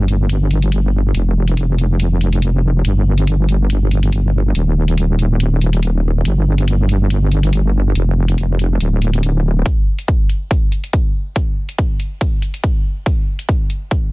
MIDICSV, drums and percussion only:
0, 0, Header, 1, 2, 480
1, 0, Start_track
1, 0, Tempo, 425532
1, 1294, Time_signature, 4, 2, 24, 8
1, 15930, End_track
2, 0, Start_track
2, 0, Title_t, "Drums"
2, 93, Note_on_c, 9, 42, 47
2, 206, Note_off_c, 9, 42, 0
2, 332, Note_on_c, 9, 42, 76
2, 445, Note_off_c, 9, 42, 0
2, 572, Note_on_c, 9, 42, 48
2, 685, Note_off_c, 9, 42, 0
2, 704, Note_on_c, 9, 42, 47
2, 813, Note_off_c, 9, 42, 0
2, 813, Note_on_c, 9, 42, 76
2, 925, Note_off_c, 9, 42, 0
2, 1293, Note_on_c, 9, 42, 72
2, 1406, Note_off_c, 9, 42, 0
2, 1665, Note_on_c, 9, 42, 44
2, 1773, Note_off_c, 9, 42, 0
2, 1773, Note_on_c, 9, 42, 69
2, 1886, Note_off_c, 9, 42, 0
2, 2014, Note_on_c, 9, 42, 44
2, 2126, Note_off_c, 9, 42, 0
2, 2253, Note_on_c, 9, 42, 72
2, 2366, Note_off_c, 9, 42, 0
2, 2493, Note_on_c, 9, 42, 45
2, 2606, Note_off_c, 9, 42, 0
2, 2624, Note_on_c, 9, 42, 46
2, 2732, Note_off_c, 9, 42, 0
2, 2732, Note_on_c, 9, 42, 71
2, 2845, Note_off_c, 9, 42, 0
2, 3213, Note_on_c, 9, 42, 69
2, 3325, Note_off_c, 9, 42, 0
2, 3584, Note_on_c, 9, 42, 44
2, 3693, Note_off_c, 9, 42, 0
2, 3693, Note_on_c, 9, 42, 66
2, 3806, Note_off_c, 9, 42, 0
2, 3933, Note_on_c, 9, 42, 44
2, 4046, Note_off_c, 9, 42, 0
2, 4173, Note_on_c, 9, 42, 70
2, 4286, Note_off_c, 9, 42, 0
2, 4414, Note_on_c, 9, 42, 47
2, 4526, Note_off_c, 9, 42, 0
2, 4545, Note_on_c, 9, 42, 45
2, 4653, Note_off_c, 9, 42, 0
2, 4653, Note_on_c, 9, 42, 72
2, 4766, Note_off_c, 9, 42, 0
2, 5133, Note_on_c, 9, 42, 70
2, 5246, Note_off_c, 9, 42, 0
2, 5505, Note_on_c, 9, 42, 43
2, 5613, Note_off_c, 9, 42, 0
2, 5613, Note_on_c, 9, 42, 66
2, 5726, Note_off_c, 9, 42, 0
2, 5853, Note_on_c, 9, 42, 44
2, 5966, Note_off_c, 9, 42, 0
2, 6093, Note_on_c, 9, 42, 70
2, 6206, Note_off_c, 9, 42, 0
2, 6333, Note_on_c, 9, 42, 45
2, 6446, Note_off_c, 9, 42, 0
2, 6465, Note_on_c, 9, 42, 46
2, 6573, Note_off_c, 9, 42, 0
2, 6573, Note_on_c, 9, 42, 69
2, 6686, Note_off_c, 9, 42, 0
2, 7053, Note_on_c, 9, 42, 73
2, 7165, Note_off_c, 9, 42, 0
2, 7424, Note_on_c, 9, 42, 44
2, 7533, Note_off_c, 9, 42, 0
2, 7533, Note_on_c, 9, 42, 71
2, 7645, Note_off_c, 9, 42, 0
2, 7772, Note_on_c, 9, 42, 44
2, 7885, Note_off_c, 9, 42, 0
2, 8013, Note_on_c, 9, 42, 74
2, 8125, Note_off_c, 9, 42, 0
2, 8252, Note_on_c, 9, 42, 46
2, 8365, Note_off_c, 9, 42, 0
2, 8384, Note_on_c, 9, 42, 47
2, 8492, Note_off_c, 9, 42, 0
2, 8492, Note_on_c, 9, 42, 74
2, 8605, Note_off_c, 9, 42, 0
2, 8972, Note_on_c, 9, 42, 72
2, 9085, Note_off_c, 9, 42, 0
2, 9345, Note_on_c, 9, 42, 48
2, 9452, Note_off_c, 9, 42, 0
2, 9452, Note_on_c, 9, 42, 75
2, 9565, Note_off_c, 9, 42, 0
2, 9692, Note_on_c, 9, 42, 47
2, 9805, Note_off_c, 9, 42, 0
2, 9932, Note_on_c, 9, 42, 77
2, 10045, Note_off_c, 9, 42, 0
2, 10173, Note_on_c, 9, 42, 50
2, 10285, Note_off_c, 9, 42, 0
2, 10304, Note_on_c, 9, 42, 48
2, 10413, Note_off_c, 9, 42, 0
2, 10413, Note_on_c, 9, 42, 76
2, 10525, Note_off_c, 9, 42, 0
2, 10893, Note_on_c, 9, 36, 91
2, 10893, Note_on_c, 9, 42, 78
2, 11005, Note_off_c, 9, 42, 0
2, 11006, Note_off_c, 9, 36, 0
2, 11264, Note_on_c, 9, 42, 48
2, 11373, Note_off_c, 9, 42, 0
2, 11373, Note_on_c, 9, 36, 94
2, 11373, Note_on_c, 9, 42, 75
2, 11485, Note_off_c, 9, 42, 0
2, 11486, Note_off_c, 9, 36, 0
2, 11613, Note_on_c, 9, 42, 49
2, 11726, Note_off_c, 9, 42, 0
2, 11853, Note_on_c, 9, 36, 93
2, 11853, Note_on_c, 9, 42, 80
2, 11965, Note_off_c, 9, 42, 0
2, 11966, Note_off_c, 9, 36, 0
2, 12093, Note_on_c, 9, 42, 49
2, 12206, Note_off_c, 9, 42, 0
2, 12225, Note_on_c, 9, 42, 53
2, 12333, Note_off_c, 9, 42, 0
2, 12333, Note_on_c, 9, 36, 89
2, 12333, Note_on_c, 9, 42, 79
2, 12445, Note_off_c, 9, 42, 0
2, 12446, Note_off_c, 9, 36, 0
2, 12813, Note_on_c, 9, 36, 93
2, 12813, Note_on_c, 9, 42, 80
2, 12926, Note_off_c, 9, 36, 0
2, 12926, Note_off_c, 9, 42, 0
2, 13185, Note_on_c, 9, 42, 52
2, 13293, Note_off_c, 9, 42, 0
2, 13293, Note_on_c, 9, 36, 95
2, 13293, Note_on_c, 9, 42, 78
2, 13406, Note_off_c, 9, 36, 0
2, 13406, Note_off_c, 9, 42, 0
2, 13533, Note_on_c, 9, 42, 50
2, 13646, Note_off_c, 9, 42, 0
2, 13773, Note_on_c, 9, 36, 91
2, 13773, Note_on_c, 9, 42, 81
2, 13886, Note_off_c, 9, 36, 0
2, 13886, Note_off_c, 9, 42, 0
2, 14013, Note_on_c, 9, 42, 52
2, 14126, Note_off_c, 9, 42, 0
2, 14145, Note_on_c, 9, 42, 51
2, 14253, Note_off_c, 9, 42, 0
2, 14253, Note_on_c, 9, 36, 90
2, 14253, Note_on_c, 9, 42, 83
2, 14366, Note_off_c, 9, 36, 0
2, 14366, Note_off_c, 9, 42, 0
2, 14733, Note_on_c, 9, 36, 93
2, 14733, Note_on_c, 9, 42, 78
2, 14846, Note_off_c, 9, 36, 0
2, 14846, Note_off_c, 9, 42, 0
2, 15104, Note_on_c, 9, 42, 50
2, 15213, Note_off_c, 9, 42, 0
2, 15213, Note_on_c, 9, 36, 93
2, 15213, Note_on_c, 9, 42, 75
2, 15326, Note_off_c, 9, 36, 0
2, 15326, Note_off_c, 9, 42, 0
2, 15453, Note_on_c, 9, 42, 49
2, 15566, Note_off_c, 9, 42, 0
2, 15693, Note_on_c, 9, 36, 97
2, 15693, Note_on_c, 9, 42, 79
2, 15806, Note_off_c, 9, 36, 0
2, 15806, Note_off_c, 9, 42, 0
2, 15930, End_track
0, 0, End_of_file